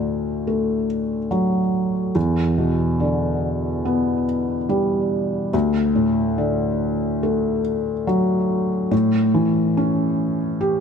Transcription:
0, 0, Header, 1, 2, 480
1, 0, Start_track
1, 0, Key_signature, 2, "major"
1, 0, Tempo, 845070
1, 1226, Time_signature, 4, 2, 24, 8
1, 6136, End_track
2, 0, Start_track
2, 0, Title_t, "Felt piano"
2, 0, Program_c, 0, 0
2, 0, Control_c, 0, 64, 127
2, 0, Note_on_c, 0, 38, 50
2, 0, Note_on_c, 0, 45, 44
2, 0, Note_on_c, 0, 50, 39
2, 268, Note_on_c, 0, 57, 43
2, 480, Note_off_c, 0, 45, 0
2, 724, Note_off_c, 0, 50, 0
2, 743, Note_on_c, 0, 54, 44
2, 1201, Note_off_c, 0, 38, 0
2, 1204, Note_off_c, 0, 57, 0
2, 1210, Note_off_c, 0, 54, 0
2, 1222, Note_on_c, 0, 40, 55
2, 1232, Control_c, 0, 64, 0
2, 1331, Control_c, 0, 64, 127
2, 1465, Note_on_c, 0, 47, 45
2, 1704, Note_on_c, 0, 50, 45
2, 2188, Note_on_c, 0, 59, 47
2, 2402, Note_off_c, 0, 47, 0
2, 2642, Note_off_c, 0, 50, 0
2, 2665, Note_on_c, 0, 55, 48
2, 3121, Note_off_c, 0, 40, 0
2, 3124, Note_off_c, 0, 59, 0
2, 3131, Note_off_c, 0, 55, 0
2, 3144, Note_on_c, 0, 38, 62
2, 3153, Control_c, 0, 64, 0
2, 3244, Control_c, 0, 64, 127
2, 3382, Note_on_c, 0, 45, 44
2, 3623, Note_on_c, 0, 50, 49
2, 4106, Note_on_c, 0, 57, 46
2, 4321, Note_off_c, 0, 45, 0
2, 4562, Note_off_c, 0, 50, 0
2, 4585, Note_on_c, 0, 54, 50
2, 5042, Note_off_c, 0, 38, 0
2, 5043, Note_off_c, 0, 57, 0
2, 5051, Note_off_c, 0, 54, 0
2, 5063, Note_on_c, 0, 45, 60
2, 5074, Control_c, 0, 64, 0
2, 5165, Control_c, 0, 64, 127
2, 5307, Note_on_c, 0, 52, 48
2, 5551, Note_on_c, 0, 61, 49
2, 6024, Note_on_c, 0, 67, 50
2, 6136, Note_off_c, 0, 45, 0
2, 6136, Note_off_c, 0, 52, 0
2, 6136, Note_off_c, 0, 61, 0
2, 6136, Note_off_c, 0, 67, 0
2, 6136, End_track
0, 0, End_of_file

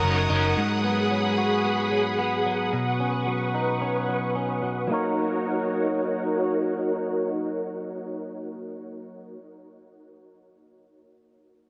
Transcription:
0, 0, Header, 1, 5, 480
1, 0, Start_track
1, 0, Key_signature, 6, "major"
1, 0, Tempo, 540541
1, 503, Time_signature, 4, 2, 24, 8
1, 10387, End_track
2, 0, Start_track
2, 0, Title_t, "String machine"
2, 0, Program_c, 0, 50
2, 0, Note_on_c, 0, 70, 78
2, 0, Note_on_c, 0, 78, 70
2, 0, Note_on_c, 0, 85, 69
2, 0, Note_on_c, 0, 87, 95
2, 470, Note_off_c, 0, 85, 0
2, 471, Note_off_c, 0, 70, 0
2, 508, Note_on_c, 0, 68, 77
2, 510, Note_on_c, 0, 83, 73
2, 2406, Note_off_c, 0, 68, 0
2, 2407, Note_off_c, 0, 83, 0
2, 2427, Note_on_c, 0, 71, 76
2, 2427, Note_on_c, 0, 85, 62
2, 4311, Note_off_c, 0, 78, 0
2, 4311, Note_off_c, 0, 87, 0
2, 4326, Note_off_c, 0, 71, 0
2, 4326, Note_off_c, 0, 85, 0
2, 4341, Note_on_c, 0, 66, 68
2, 4341, Note_on_c, 0, 78, 76
2, 4342, Note_on_c, 0, 63, 72
2, 4342, Note_on_c, 0, 70, 61
2, 4342, Note_on_c, 0, 73, 62
2, 8279, Note_off_c, 0, 66, 0
2, 8279, Note_off_c, 0, 78, 0
2, 8280, Note_off_c, 0, 63, 0
2, 8280, Note_off_c, 0, 70, 0
2, 8280, Note_off_c, 0, 73, 0
2, 10387, End_track
3, 0, Start_track
3, 0, Title_t, "Overdriven electric guitar"
3, 0, Program_c, 1, 29
3, 0, Note_on_c, 1, 54, 83
3, 0, Note_on_c, 1, 61, 76
3, 0, Note_on_c, 1, 63, 69
3, 0, Note_on_c, 1, 70, 87
3, 244, Note_off_c, 1, 70, 0
3, 255, Note_on_c, 1, 70, 49
3, 266, Note_off_c, 1, 61, 0
3, 270, Note_off_c, 1, 63, 0
3, 274, Note_on_c, 1, 63, 46
3, 289, Note_on_c, 1, 61, 43
3, 499, Note_off_c, 1, 70, 0
3, 509, Note_off_c, 1, 63, 0
3, 516, Note_off_c, 1, 61, 0
3, 960, Note_off_c, 1, 54, 0
3, 10387, End_track
4, 0, Start_track
4, 0, Title_t, "Clean electric guitar"
4, 0, Program_c, 2, 27
4, 0, Note_on_c, 2, 54, 72
4, 0, Note_on_c, 2, 63, 49
4, 0, Note_on_c, 2, 73, 54
4, 26, Note_on_c, 2, 70, 51
4, 262, Note_off_c, 2, 63, 0
4, 265, Note_on_c, 2, 63, 54
4, 507, Note_on_c, 2, 44, 70
4, 533, Note_off_c, 2, 54, 0
4, 553, Note_off_c, 2, 70, 0
4, 554, Note_off_c, 2, 73, 0
4, 744, Note_off_c, 2, 63, 0
4, 748, Note_on_c, 2, 59, 55
4, 985, Note_on_c, 2, 54, 52
4, 1226, Note_on_c, 2, 66, 58
4, 1461, Note_off_c, 2, 59, 0
4, 1464, Note_on_c, 2, 59, 52
4, 1699, Note_off_c, 2, 54, 0
4, 1702, Note_on_c, 2, 54, 46
4, 1937, Note_off_c, 2, 59, 0
4, 1941, Note_on_c, 2, 59, 53
4, 2181, Note_off_c, 2, 54, 0
4, 2185, Note_on_c, 2, 54, 51
4, 2419, Note_off_c, 2, 44, 0
4, 2423, Note_on_c, 2, 47, 67
4, 2660, Note_off_c, 2, 59, 0
4, 2664, Note_on_c, 2, 61, 49
4, 2901, Note_off_c, 2, 54, 0
4, 2904, Note_on_c, 2, 54, 56
4, 3144, Note_off_c, 2, 66, 0
4, 3148, Note_on_c, 2, 63, 55
4, 3382, Note_off_c, 2, 61, 0
4, 3386, Note_on_c, 2, 61, 50
4, 3624, Note_off_c, 2, 54, 0
4, 3627, Note_on_c, 2, 54, 43
4, 3861, Note_off_c, 2, 61, 0
4, 3864, Note_on_c, 2, 61, 47
4, 4103, Note_off_c, 2, 54, 0
4, 4107, Note_on_c, 2, 54, 45
4, 4329, Note_off_c, 2, 54, 0
4, 4329, Note_on_c, 2, 54, 65
4, 4343, Note_off_c, 2, 47, 0
4, 4346, Note_on_c, 2, 58, 62
4, 4358, Note_off_c, 2, 61, 0
4, 4362, Note_off_c, 2, 63, 0
4, 4362, Note_on_c, 2, 63, 70
4, 4374, Note_on_c, 2, 70, 69
4, 4385, Note_on_c, 2, 73, 79
4, 8303, Note_off_c, 2, 54, 0
4, 8320, Note_off_c, 2, 58, 0
4, 8335, Note_off_c, 2, 63, 0
4, 8348, Note_off_c, 2, 70, 0
4, 8358, Note_off_c, 2, 73, 0
4, 10387, End_track
5, 0, Start_track
5, 0, Title_t, "Picked electric bass"
5, 0, Program_c, 3, 34
5, 28, Note_on_c, 3, 30, 78
5, 237, Note_off_c, 3, 30, 0
5, 270, Note_on_c, 3, 30, 90
5, 479, Note_off_c, 3, 30, 0
5, 10387, End_track
0, 0, End_of_file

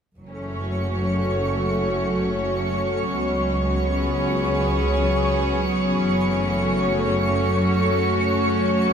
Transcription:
0, 0, Header, 1, 6, 480
1, 0, Start_track
1, 0, Key_signature, 3, "minor"
1, 0, Tempo, 967742
1, 93, Time_signature, 3, 2, 24, 8
1, 4429, End_track
2, 0, Start_track
2, 0, Title_t, "Synth texture"
2, 0, Program_c, 0, 99
2, 77, Note_on_c, 0, 85, 81
2, 4429, Note_off_c, 0, 85, 0
2, 4429, End_track
3, 0, Start_track
3, 0, Title_t, "String section"
3, 0, Program_c, 1, 48
3, 93, Note_on_c, 1, 54, 59
3, 140, Note_on_c, 1, 61, 70
3, 156, Note_on_c, 1, 57, 55
3, 262, Note_on_c, 1, 73, 66
3, 298, Note_on_c, 1, 66, 53
3, 1532, Note_off_c, 1, 57, 0
3, 1555, Note_on_c, 1, 59, 68
3, 1931, Note_on_c, 1, 68, 70
3, 2110, Note_off_c, 1, 66, 0
3, 3118, Note_on_c, 1, 57, 67
3, 3167, Note_on_c, 1, 66, 72
3, 3519, Note_off_c, 1, 68, 0
3, 3544, Note_off_c, 1, 59, 0
3, 4413, Note_off_c, 1, 57, 0
3, 4429, Note_off_c, 1, 54, 0
3, 4429, Note_off_c, 1, 61, 0
3, 4429, Note_off_c, 1, 66, 0
3, 4429, Note_off_c, 1, 73, 0
3, 4429, End_track
4, 0, Start_track
4, 0, Title_t, "Synth drone"
4, 0, Program_c, 2, 95
4, 76, Note_on_c, 2, 54, 61
4, 78, Note_on_c, 2, 66, 70
4, 4429, Note_off_c, 2, 54, 0
4, 4429, Note_off_c, 2, 66, 0
4, 4429, End_track
5, 0, Start_track
5, 0, Title_t, "Cello"
5, 0, Program_c, 3, 42
5, 101, Note_on_c, 3, 52, 70
5, 566, Note_on_c, 3, 54, 67
5, 573, Note_off_c, 3, 52, 0
5, 1037, Note_on_c, 3, 57, 85
5, 1044, Note_off_c, 3, 54, 0
5, 1515, Note_on_c, 3, 56, 82
5, 1523, Note_off_c, 3, 57, 0
5, 2009, Note_on_c, 3, 54, 75
5, 2016, Note_off_c, 3, 56, 0
5, 2485, Note_off_c, 3, 54, 0
5, 2488, Note_on_c, 3, 54, 88
5, 2958, Note_on_c, 3, 52, 83
5, 2966, Note_off_c, 3, 54, 0
5, 3455, Note_on_c, 3, 54, 80
5, 3462, Note_off_c, 3, 52, 0
5, 3925, Note_off_c, 3, 54, 0
5, 3927, Note_on_c, 3, 57, 93
5, 4405, Note_on_c, 3, 59, 93
5, 4412, Note_off_c, 3, 57, 0
5, 4429, Note_off_c, 3, 59, 0
5, 4429, End_track
6, 0, Start_track
6, 0, Title_t, "Double bass section"
6, 0, Program_c, 4, 48
6, 81, Note_on_c, 4, 30, 64
6, 1503, Note_off_c, 4, 30, 0
6, 1529, Note_on_c, 4, 37, 64
6, 2947, Note_off_c, 4, 37, 0
6, 2978, Note_on_c, 4, 30, 69
6, 4392, Note_off_c, 4, 30, 0
6, 4412, Note_on_c, 4, 37, 71
6, 4429, Note_off_c, 4, 37, 0
6, 4429, End_track
0, 0, End_of_file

